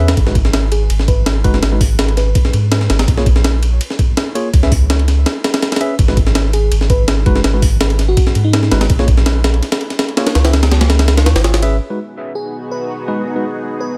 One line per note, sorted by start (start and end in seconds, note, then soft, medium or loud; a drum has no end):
0.00 0.15 E2 medium
0.00 0.12 C#4 medium
0.00 0.12 G#4 medium
0.00 0.12 B4 medium
0.00 0.12 E5 medium
0.08 snare loud
0.08 ride medium
0.17 0.88 G#1 medium
0.17 kick loud
0.17 ride medium
0.26 0.34 G#3 medium
0.26 0.34 D#4 medium
0.26 0.34 F#4 medium
0.26 0.34 B4 medium
0.26 snare medium
0.35 kick medium
0.35 ride medium
0.45 snare medium
0.53 snare loud
0.53 ride medium
0.72 0.94 G#4 medium
0.72 ride medium
0.90 1.43 G#1 medium
0.90 ride medium
0.99 snare soft
1.08 1.30 B4 medium
1.08 kick medium
1.08 ride medium
1.26 snare loud
1.26 ride medium
1.44 1.61 F#1 loud
1.44 1.58 G#3 medium
1.44 1.58 D#4 medium
1.44 1.58 F#4 medium
1.44 1.58 B4 loud
1.44 kick medium
1.44 ride medium
1.54 snare soft
1.62 2.34 G#1 medium
1.62 snare loud
1.62 ride medium
1.72 1.80 G#3 medium
1.72 1.80 D#4 medium
1.72 1.80 F#4 medium
1.72 1.80 B4 medium
1.81 kick medium
1.81 open hi-hat medium
1.99 snare loud
1.99 ride medium
2.08 ride soft
2.17 2.53 B4 medium
2.17 snare soft
2.17 ride medium
2.35 kick loud
2.35 ride medium
2.45 snare soft
2.53 2.88 G#2 medium
2.53 ride medium
2.72 snare loud
2.72 ride medium
2.81 snare soft
2.90 3.06 G#1 medium
2.90 snare loud
2.90 ride medium
2.99 snare loud
2.99 ride medium
3.08 3.79 A#1 loud
3.08 kick loud
3.08 ride medium
3.17 3.25 A#3 medium
3.17 3.25 F4 medium
3.17 3.25 G#4 medium
3.17 3.25 C#5 medium
3.17 snare medium
3.26 kick medium
3.26 ride medium
3.36 snare medium
3.44 snare loud
3.44 ride medium
3.63 ride medium
3.81 ride medium
3.90 snare soft
3.99 kick medium
3.99 ride medium
4.17 snare loud
4.17 ride medium
4.35 4.48 A#3 medium
4.35 4.49 F4 medium
4.35 4.48 G#4 medium
4.35 4.48 C#5 loud
4.35 ride medium
4.54 5.25 C#2 loud
4.54 kick loud
4.54 ride medium
4.63 4.71 C#4 medium
4.63 4.71 G#4 medium
4.63 4.71 B4 medium
4.63 4.71 E5 medium
4.63 snare medium
4.72 kick loud
4.72 open hi-hat medium
4.90 snare loud
4.90 ride medium
4.99 ride soft
5.08 snare soft
5.08 ride medium
5.26 snare loud
5.26 ride medium
5.44 snare loud
5.44 ride medium
5.54 snare loud
5.54 ride medium
5.63 snare loud
5.63 ride medium
5.72 snare medium
5.72 ride medium
5.76 snare medium
5.76 ride medium
5.81 5.94 C#4 medium
5.81 5.94 G#4 medium
5.81 5.94 B4 medium
5.81 5.94 E5 loud
5.81 ride medium
5.99 6.70 G#1 loud
5.99 kick loud
5.99 ride medium
6.08 6.16 G#3 medium
6.08 6.16 D#4 medium
6.08 6.16 F#4 medium
6.08 6.16 B4 medium
6.08 snare medium
6.17 kick medium
6.17 ride medium
6.27 snare medium
6.35 snare loud
6.35 ride medium
6.53 6.75 G#4 medium
6.53 ride medium
6.72 7.25 G#1 medium
6.72 ride medium
6.81 snare soft
6.90 7.18 B4 medium
6.90 kick medium
6.90 ride medium
7.08 snare loud
7.08 ride medium
7.26 7.43 F#1 loud
7.26 7.39 G#3 medium
7.26 7.39 D#4 medium
7.26 7.39 F#4 medium
7.26 7.39 B4 loud
7.26 kick medium
7.26 ride medium
7.36 snare soft
7.44 8.16 G#1 loud
7.44 snare loud
7.44 ride medium
7.54 7.62 G#3 medium
7.54 7.62 D#4 medium
7.54 7.62 F#4 medium
7.54 7.62 B4 medium
7.62 kick loud
7.62 open hi-hat medium
7.81 snare loud
7.81 ride medium
7.90 ride soft
7.99 snare soft
7.99 ride medium
8.08 8.43 F#4 medium
8.17 kick loud
8.17 ride medium
8.27 snare soft
8.35 8.70 G#2 medium
8.35 ride medium
8.45 8.72 D#4 medium
8.53 snare loud
8.53 ride medium
8.63 snare soft
8.72 8.88 G#1 medium
8.72 8.85 G#3 medium
8.72 8.85 D#4 medium
8.72 8.85 F#4 medium
8.72 8.85 B4 loud
8.72 snare loud
8.72 ride medium
8.81 snare loud
8.81 ride medium
8.90 9.61 A#1 loud
8.90 kick loud
8.90 ride medium
8.99 9.07 A#3 medium
8.99 9.07 F4 medium
8.99 9.07 G#4 medium
8.99 9.07 C#5 medium
8.99 snare medium
9.08 kick medium
9.08 ride medium
9.17 snare medium
9.26 snare loud
9.26 ride medium
9.44 snare loud
9.44 ride medium
9.54 ride soft
9.63 snare soft
9.63 ride medium
9.72 snare loud
9.72 ride medium
9.81 ride soft
9.90 snare soft
9.90 ride medium
9.99 snare loud
9.99 ride medium
10.09 ride soft
10.17 10.30 A#3 medium
10.17 10.30 F4 medium
10.17 10.30 G#4 medium
10.17 10.30 C#5 loud
10.17 snare loud
10.17 ride medium
10.27 snare loud
10.27 ride medium
10.35 11.28 C#2 loud
10.35 snare loud
10.35 ride medium
10.45 10.53 C#4 medium
10.45 10.53 G#4 medium
10.45 10.53 B4 medium
10.45 10.53 E5 medium
10.45 snare loud
10.45 ride medium
10.53 snare loud
10.53 ride medium
10.63 snare loud
10.63 ride medium
10.71 snare loud
10.71 ride medium
10.81 snare loud
10.81 ride medium
10.90 snare loud
10.90 ride medium
10.99 snare loud
10.99 ride medium
11.08 snare loud
11.08 ride medium
11.17 snare loud
11.17 ride medium
11.26 11.35 D#2 loud
11.26 snare loud
11.26 ride medium
11.36 11.79 G#1 loud
11.36 snare loud
11.36 ride medium
11.44 snare loud
11.44 ride medium
11.54 snare loud
11.54 ride medium
11.62 11.76 C#4 medium
11.62 11.76 G#4 medium
11.62 11.76 B4 medium
11.62 11.76 E5 loud
11.62 ride medium
11.81 13.98 B3 medium
11.81 13.98 D#4 medium
11.81 13.98 F#4 medium
11.81 13.98 G#4 medium
11.90 11.98 G#3 medium
11.90 11.98 D#4 medium
11.90 11.98 F#4 medium
11.90 11.98 B4 medium
12.35 12.57 G#4 medium
12.71 12.94 B4 medium
13.08 13.21 G#3 medium
13.08 13.21 D#4 medium
13.08 13.21 F#4 medium
13.08 13.21 B4 medium
13.36 13.44 G#3 medium
13.36 13.43 D#4 medium
13.36 13.44 F#4 medium
13.36 13.44 B4 medium
13.80 13.98 B4 medium